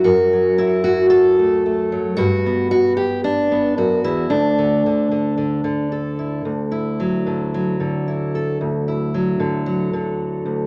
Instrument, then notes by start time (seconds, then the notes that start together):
steel-string acoustic guitar
0.04 F#2 F#4
0.33 F#3
0.58 E4
0.84 F#4
1.10 A4
1.39 A3
1.66 A3
1.92 F#3
2.17 G2 F#4
2.46 B3
2.71 F#4
2.97 G4
3.24 D4
3.52 B3
3.77 F#2 F#4
4.04 E2 E4
4.30 D2 D4
4.58 D3
4.86 D3
5.11 D3
5.38 D3
5.64 D3
5.92 A4
6.19 E4
6.45 D2
6.72 E4
7.00 F#3
7.26 D3
7.54 F#3
7.80 D3
8.08 E4
8.35 A4
8.61 D2
8.88 E4
9.14 F#3
9.40 D3
9.66 F#3
9.93 D3
10.45 D2